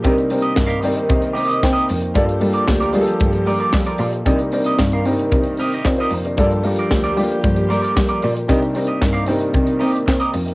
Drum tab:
HH |xxox-xoxxxox-xox|xxox-xoxxxox-xox|xxox-xoxxxox-xox|xxox-xoxxxox-xox|
CP |----x-------x---|----x-------x---|----x-------x---|----x-------x---|
SD |----o-------o---|----o-------o---|----o-------o---|----o-------o---|
BD |o---o---o---o---|o---o---o---o---|o---o---o---o---|o---o---o---o---|

HH |xxox-xoxxxox-xox|
CP |----x-------x---|
SD |----o-------o---|
BD |o---o---o---o---|